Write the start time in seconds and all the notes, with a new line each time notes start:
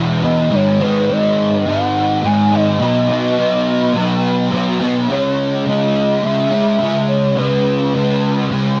Already playing: E2 B2 E3 B3
0.22 B2 E3 D#5
0.51 G#2 D#3 G#3 C#5
0.80 D#3 G#3 B4
1.12 D#5
1.66 G#2 D#3 G#3 F#5
2.23 G#2 D#3 G#3 G#5
2.52 D#3 G#3 D#5
2.79 B2 F#3 B3
3.08 F#3 B3
3.94 B2 F#3 B3
4.51 B2 F#3 B3
4.79 F#3 B3
5.08 C#3 G#3 C#4 C#5
5.65 C#3 G#3 C#4 D#5
6.22 C#3 G#3 C#4 E5
6.51 G#3 C#4
6.79 C#3 G#3 C#4
7.08 C#5
7.36 C#3 G#3 C#4 B4
7.94 C#3 G#3 C#4
8.50 C#3 G#3 C#4